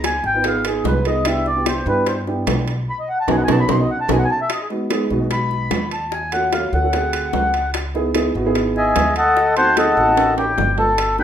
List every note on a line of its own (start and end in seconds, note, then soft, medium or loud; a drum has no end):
0.00 0.18 C#2 medium
0.00 0.13 B3 medium
0.00 0.13 D#4 medium
0.00 0.14 F4 medium
0.00 0.14 G#4 medium
0.00 high bongo medium
0.04 0.24 G#5 medium
0.04 high timbale medium
0.04 low timbale medium
0.24 0.81 G#1 medium
0.24 0.45 G5 medium
0.24 high bongo soft
0.34 0.41 B3 medium
0.34 0.42 D#4 medium
0.34 0.42 F4 medium
0.34 0.42 B4 medium
0.44 0.59 B3 medium
0.44 0.59 D#4 medium
0.44 0.59 F4 medium
0.44 0.59 G#4 medium
0.44 0.66 F5 medium
0.44 high bongo medium
0.44 high timbale medium
0.64 0.93 B3 medium
0.64 0.93 D#4 medium
0.64 0.94 F4 medium
0.64 0.94 G#4 medium
0.64 0.85 G#4 medium
0.64 high bongo soft
0.64 high timbale medium
0.84 1.80 C2 medium
0.84 1.06 B4 medium
0.84 high bongo soft
0.84 low bongo medium
0.84 low timbale medium
1.05 1.20 B3 medium
1.05 1.20 D#4 medium
1.05 1.20 F4 medium
1.05 1.20 G#4 medium
1.05 1.26 D#5 medium
1.05 high timbale medium
1.25 1.47 B3 medium
1.25 1.47 D4 medium
1.25 1.47 E4 medium
1.25 1.48 G4 medium
1.25 1.46 E5 medium
1.25 high bongo medium
1.25 high timbale medium
1.46 1.66 D5 medium
1.46 high bongo soft
1.55 1.77 B3 medium
1.55 1.77 D4 medium
1.55 1.78 E4 medium
1.55 1.78 G4 medium
1.66 1.87 C5 medium
1.66 high bongo medium
1.66 high timbale medium
1.66 low timbale medium
1.86 2.43 G2 medium
1.86 2.15 B3 medium
1.86 2.15 D4 medium
1.86 2.15 E4 medium
1.86 2.16 G4 medium
1.86 2.07 B4 medium
1.86 high bongo soft
2.06 2.20 C5 medium
2.06 high bongo medium
2.06 high timbale medium
2.27 2.70 B3 medium
2.27 2.70 D4 medium
2.27 2.70 E4 medium
2.27 2.70 G4 medium
2.27 high bongo soft
2.47 2.85 B1 loud
2.47 high bongo soft
2.47 low bongo medium
2.47 high timbale medium
2.47 low timbale medium
2.68 high timbale medium
2.90 2.99 B5 medium
2.99 3.09 D#5 medium
3.09 3.18 F#5 medium
3.20 3.29 A5 loud
3.28 3.43 B1 medium
3.28 3.42 B3 loud
3.28 3.42 D#4 medium
3.28 3.42 F#4 loud
3.28 3.36 G#5 medium
3.28 low bongo loud
3.28 high timbale loud
3.37 3.43 F#5 medium
3.44 3.50 G#5 medium
3.48 3.63 B1 loud
3.48 3.62 B3 loud
3.48 3.62 D#4 medium
3.48 3.62 F#4 loud
3.48 3.59 A5 loud
3.48 low bongo medium
3.48 high timbale loud
3.60 3.69 B5 medium
3.68 3.84 B1 medium
3.68 3.82 B3 medium
3.68 3.82 D#4 medium
3.68 3.82 F#4 medium
3.68 3.80 C6 loud
3.68 low bongo medium
3.68 high timbale loud
3.81 3.90 D#5 medium
3.91 4.00 F#5 medium
4.01 4.10 A5 medium
4.08 4.24 B1 loud
4.08 4.23 B3 medium
4.08 4.23 D#4 medium
4.08 4.23 F#4 medium
4.08 4.18 G#5 medium
4.08 low bongo loud
4.08 high timbale loud
4.19 4.24 F#5 medium
4.25 4.30 G#5 medium
4.31 4.40 A5 loud
4.42 4.51 E5 medium
4.50 4.61 D#5 medium
4.50 high bongo medium
4.50 high timbale medium
4.62 4.67 G#4 medium
4.70 4.84 G#3 medium
4.70 4.85 B3 medium
4.70 4.85 D#4 medium
4.70 4.85 F#4 medium
4.70 high bongo soft
4.90 5.05 G#3 medium
4.90 5.05 B3 medium
4.90 5.05 D#4 medium
4.90 5.05 G#4 medium
4.90 high bongo medium
4.90 high timbale medium
4.90 low timbale medium
5.10 5.67 B1 medium
5.10 5.18 G#3 medium
5.10 5.18 B3 medium
5.10 5.18 D#4 medium
5.10 5.18 F#4 medium
5.10 high bongo soft
5.20 5.77 G#3 medium
5.20 5.78 B3 medium
5.20 5.78 D#4 medium
5.20 5.78 F#4 medium
5.31 5.89 B5 loud
5.31 high bongo medium
5.31 high timbale medium
5.51 high bongo soft
5.71 6.67 D#2 medium
5.71 high bongo soft
5.71 low bongo medium
5.71 high timbale medium
5.71 low timbale medium
5.91 6.12 A5 medium
5.91 high timbale medium
6.12 6.32 G#5 medium
6.12 high bongo medium
6.32 6.47 A3 medium
6.32 6.47 C#4 medium
6.32 6.47 F4 medium
6.32 6.48 F#4 medium
6.32 6.52 F#5 medium
6.32 high bongo soft
6.32 high timbale medium
6.53 6.67 A3 medium
6.53 6.67 C#4 medium
6.53 6.68 F4 medium
6.53 6.68 F#4 medium
6.53 6.73 F5 medium
6.53 high bongo medium
6.53 high timbale medium
6.53 low timbale medium
6.73 7.30 D2 medium
6.73 6.80 A3 medium
6.73 6.80 C#4 medium
6.73 6.81 F4 medium
6.73 6.81 A4 medium
6.73 7.71 F#5 loud
6.73 high bongo soft
6.83 6.91 A3 medium
6.83 6.93 C#4 medium
6.83 6.94 F4 medium
6.83 6.94 A4 medium
6.93 7.58 A3 medium
6.93 7.58 C4 medium
6.93 7.59 F#4 medium
6.93 7.59 G#4 medium
6.93 high bongo medium
6.93 high timbale medium
7.13 high bongo soft
7.13 high timbale medium
7.33 8.29 C#2 medium
7.33 high bongo soft
7.33 low bongo medium
7.33 low timbale medium
7.54 high timbale medium
7.74 high bongo medium
7.74 high timbale medium
7.94 8.09 B3 medium
7.94 8.09 D#4 medium
7.94 8.09 E4 medium
7.94 8.10 G#4 loud
7.94 high bongo soft
8.14 8.29 B3 medium
8.14 8.29 D#4 medium
8.14 8.29 E4 medium
8.14 8.29 G#4 loud
8.14 high bongo medium
8.14 high timbale medium
8.14 low timbale medium
8.35 8.92 G#1 medium
8.35 8.42 B3 medium
8.35 8.42 D#4 medium
8.35 8.43 E4 medium
8.35 8.43 F#4 medium
8.35 high bongo soft
8.45 9.02 B3 medium
8.45 9.02 D#4 medium
8.45 9.03 E4 medium
8.45 9.03 G#4 loud
8.55 high bongo medium
8.55 high timbale medium
8.76 9.14 G#4 medium
8.76 9.14 D#5 medium
8.76 9.14 E5 medium
8.76 9.14 G#5 medium
8.76 high bongo soft
8.96 9.91 D2 medium
8.96 high bongo soft
8.96 low bongo medium
8.96 high timbale medium
8.96 low timbale medium
9.16 9.55 A4 medium
9.16 9.55 D#5 medium
9.16 9.55 F#5 medium
9.16 9.54 A5 loud
9.16 high timbale medium
9.37 high bongo medium
9.57 9.71 A3 medium
9.57 9.71 C4 medium
9.57 9.72 D#4 medium
9.57 9.72 F#4 medium
9.57 9.77 C5 medium
9.57 9.76 F#5 medium
9.57 9.76 A5 medium
9.57 9.77 C6 loud
9.57 high bongo soft
9.57 high timbale medium
9.77 9.91 A3 medium
9.77 9.92 C4 medium
9.77 9.92 D#4 medium
9.77 9.92 G#4 medium
9.77 10.34 A4 medium
9.77 10.34 D#5 medium
9.77 10.34 F#5 medium
9.77 10.34 A5 medium
9.77 high bongo medium
9.77 high timbale medium
9.77 low timbale medium
9.97 10.54 A1 medium
9.97 10.04 A3 medium
9.97 10.05 C4 medium
9.97 10.05 D#4 medium
9.97 10.05 F#4 medium
9.97 high bongo soft
10.07 10.64 A3 medium
10.07 10.64 C4 medium
10.07 10.65 D#4 medium
10.07 10.65 F#4 medium
10.17 high bongo medium
10.17 high timbale medium
10.38 10.76 G4 medium
10.38 10.76 G5 medium
10.38 high bongo soft
10.38 high timbale medium
10.58 11.23 G1 medium
10.58 high bongo soft
10.58 low bongo medium
10.58 low timbale medium
10.78 11.16 A4 medium
10.78 11.16 A5 medium
10.78 low timbale medium
10.98 high bongo medium
10.98 high timbale medium
11.18 11.23 A3 medium
11.18 11.23 B3 medium
11.18 11.23 D4 medium
11.18 11.23 F#4 medium
11.18 11.23 B4 medium
11.18 11.23 F#5 medium
11.18 11.23 G5 medium
11.18 11.23 B5 loud
11.18 high bongo soft